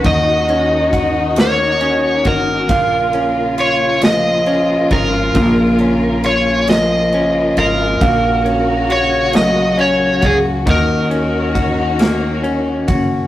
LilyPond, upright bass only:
\new Staff \with { instrumentName = "Upright bass" } { \clef bass \time 6/8 \key ees \minor \tempo 4. = 45 ees,2~ ees,8 aes,,8 | bes,,2~ bes,,8 aes,,8 | bes,,2~ bes,,8 aes,,8 | bes,,2~ bes,,8 des,8 |
ees,2~ ees,8 ges,,8 | }